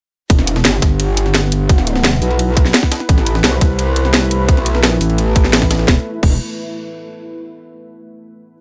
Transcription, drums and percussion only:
0.30 kick, closed hi-hat, ride
0.39 snare
0.47 closed hi-hat, ride
0.56 snare
0.65 snare, closed hi-hat, ride
0.73 snare
0.82 kick, snare, closed hi-hat, ride
1.00 closed hi-hat, ride
1.17 closed hi-hat, ride
1.26 snare
1.35 snare, closed hi-hat, ride
1.52 closed hi-hat, ride
1.69 kick, closed hi-hat, ride
1.78 snare
1.87 closed hi-hat, ride
1.96 snare
2.04 snare, closed hi-hat, ride
2.13 snare
2.22 open hi-hat, ride
2.31 ride
2.39 closed hi-hat, ride
2.57 kick, closed hi-hat, ride
2.65 snare
2.74 snare, closed hi-hat, open hi-hat
2.83 kick, snare
2.92 snare, closed hi-hat, ride
3.00 snare
3.09 kick, closed hi-hat, ride
3.18 snare
3.26 closed hi-hat, ride
3.35 snare
3.44 snare, closed hi-hat, ride
3.53 snare
3.61 kick, snare, closed hi-hat, ride
3.79 closed hi-hat, ride
3.96 closed hi-hat, ride
4.05 snare
4.14 snare, closed hi-hat, ride
4.31 closed hi-hat, ride
4.49 kick, closed hi-hat, ride
4.57 snare
4.66 closed hi-hat, ride
4.75 snare
4.83 snare, closed hi-hat, ride
4.92 snare
5.01 open hi-hat, ride
5.10 ride
5.18 closed hi-hat, ride
5.36 kick, closed hi-hat, ride
5.44 snare
5.53 snare, closed hi-hat, open hi-hat
5.62 kick, snare
5.71 snare, closed hi-hat, ride
5.79 snare
5.88 kick, snare
6.23 kick, crash

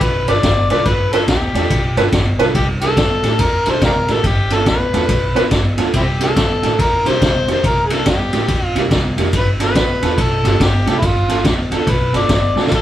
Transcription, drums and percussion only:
0.01 kick, snare, ride
0.28 snare, ride
0.43 kick, snare, ride
0.70 snare, ride
0.85 kick, snare, ride
1.13 snare, ride
1.28 kick, snare, ride
1.55 snare, ride
1.70 kick, snare, ride
1.97 snare, ride
2.12 kick, snare, ride
2.39 snare, ride
2.55 kick, snare, ride
2.81 snare, ride
2.97 kick, snare, ride
3.24 snare, ride
3.39 kick, snare, ride
3.66 snare, ride
3.81 kick, snare, ride
4.08 snare, ride
4.24 kick, snare, ride
4.50 snare, ride
4.66 kick, snare, ride
4.94 snare, ride
5.09 kick, snare, ride
5.36 snare, ride
5.51 kick, snare, ride
5.78 snare, ride
5.94 kick, snare, ride
6.21 snare, ride
6.36 kick, snare, ride
6.63 snare, ride
6.79 kick, snare, ride
7.06 snare, ride
7.21 kick, snare, ride
7.48 snare, ride
7.64 kick, snare, ride
7.90 snare, ride
8.06 kick, snare, ride
8.33 snare, ride
8.48 kick, snare, ride
8.76 snare, ride
8.91 kick, snare, ride
9.18 snare, ride
9.33 kick, snare, ride
9.60 snare, ride
9.75 kick, snare, ride
10.03 snare, ride
10.18 kick, snare, ride
10.45 snare, ride
10.60 kick, snare, ride
10.87 snare, ride
11.02 kick, snare, ride
11.29 snare, ride
11.45 kick, snare, ride
11.72 snare, ride
11.87 kick, snare, ride
12.14 snare, ride
12.29 kick, snare, ride
12.57 snare
12.67 snare
12.72 kick, snare, ride

